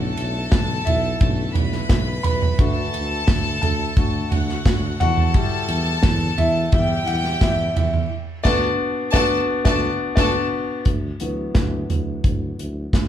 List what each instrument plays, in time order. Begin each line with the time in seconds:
Already playing: tuba B1, grand piano A3 C#4 D4 E4 F#5, violin section A4 A5
0.17 tuba B1, ride
0.52 tuba B1, kick, snare, ride
0.85 tuba B1, grand piano E4 E5, floor tom, ride
1.20 tuba B1, grand piano A3 C#4 D4, kick, ride
1.54 tuba B1, violin section B4 B5, floor tom, ride
1.72 snare
1.89 tuba B1, kick, snare, ride
2.23 tuba B1, grand piano B4 B5, floor tom, ride
2.42 floor tom
2.58 tuba D2, grand piano A3 D4 F#4, violin section A4 A5, kick, ride
2.94 tuba D2, ride
3.28 tuba D2, kick, snare, ride
3.62 tuba D2, grand piano A4 A5, floor tom, ride
3.97 tuba D2, grand piano A3 D4 F#4, kick, ride
4.31 tuba D2, violin section F#4 F#5, floor tom, ride
4.49 snare
4.66 tuba D2, kick, snare, ride
5.00 tuba E2, grand piano F#4 F#5, violin section A4 A5, floor tom, ride
5.17 floor tom
5.34 grand piano G3 E4 G4, kick, ride
5.68 tuba E2, ride
6.03 tuba E2, kick, snare, ride
6.37 tuba E2, grand piano E4 E5, floor tom, ride
6.72 tuba E2, grand piano G3 E4 E5, violin section G4 G5, kick, ride
7.06 tuba E2, grand piano F#5, ride
7.24 snare
7.41 tuba E2, grand piano E4 E5, kick, snare, ride
7.76 tuba E2, grand piano E4 E5, floor tom, ride
7.94 floor tom
8.44 tuba D2, grand piano B3 D4 F#4 D5, violin section A4 A5, kick, snare, crash
9.13 tuba D2, grand piano B3 D4 F#4 D5, violin section A4 A5, kick, snare
9.65 tuba D2, grand piano B3 D4 F#4 D5, violin section A4 A5, kick, snare
10.15 tuba D2, grand piano B3 D4 F#4 D5, violin section A4 A5, kick, snare, crash
10.85 tuba D2, kick, closed hi-hat
11.20 tuba D2, grand piano E3 F#3 B3, closed hi-hat
11.55 tuba D2, kick, snare, closed hi-hat
11.89 tuba D2, closed hi-hat, floor tom
12.24 tuba D2, kick, closed hi-hat
12.58 tuba D2, closed hi-hat
12.93 tuba D2, kick, snare, closed hi-hat